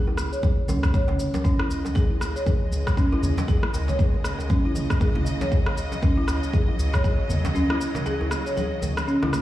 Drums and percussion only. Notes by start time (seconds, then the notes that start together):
0.07 djembe tone
0.17 cross-stick, shaker
0.33 shaker
0.43 kick, high conga, djembe tone, shaker
0.68 high conga, djembe tone, low conga, shaker
0.83 kick, cross-stick, high conga, shaker
0.94 kick, shaker
1.08 djembe slap, djembe tone, low conga
1.19 low conga, shaker
1.34 djembe slap, high conga, djembe tone, shaker
1.45 kick, shaker
1.59 cross-stick, djembe tone
1.71 shaker
1.85 djembe slap, djembe tone, high conga, shaker
1.95 kick, djembe slap, shaker
2.20 cross-stick, djembe tone, shaker
2.37 shaker
2.46 kick, djembe tone, high conga, shaker
2.72 shaker
2.87 kick, cross-stick, djembe slap, djembe tone, shaker
2.97 kick, shaker
3.12 djembe tone
3.22 low conga, shaker
3.38 djembe slap, high conga, shaker
3.48 kick, djembe tone, shaker
3.63 cross-stick
3.74 djembe tone, shaker
3.88 djembe slap, high conga, low conga, shaker
3.99 kick, shaker
4.14 djembe tone
4.24 cross-stick, shaker
4.39 djembe tone, shaker
4.50 kick, high conga, shaker
4.75 djembe tone, high conga, low conga, shaker
4.90 kick, cross-stick, shaker
5.00 kick, djembe tone, shaker
5.15 djembe slap, low conga
5.26 low conga, shaker
5.41 djembe slap, djembe tone, high conga, shaker
5.52 kick, shaker
5.66 cross-stick, djembe tone
5.77 shaker
5.92 djembe slap, high conga, shaker
6.03 kick, djembe slap, djembe tone, shaker
6.28 cross-stick, djembe tone, shaker
6.43 shaker
6.53 kick, high conga, shaker
6.68 djembe tone
6.79 shaker
6.93 kick, cross-stick, djembe slap, djembe tone, shaker
7.04 kick, shaker
7.29 djembe tone, low conga, shaker
7.45 djembe slap, high conga, shaker
7.55 djembe tone, shaker
7.70 cross-stick
7.81 shaker
7.95 djembe slap, djembe tone, high conga, low conga, shaker
8.06 djembe slap, shaker
8.21 djembe tone
8.31 cross-stick, shaker
8.47 shaker
8.57 djembe tone, high conga, shaker
8.82 high conga, djembe tone, low conga, shaker
8.97 cross-stick, high conga, shaker
9.08 shaker
9.22 cross-stick, djembe slap, high conga, djembe tone, low conga
9.33 cross-stick, low conga, shaker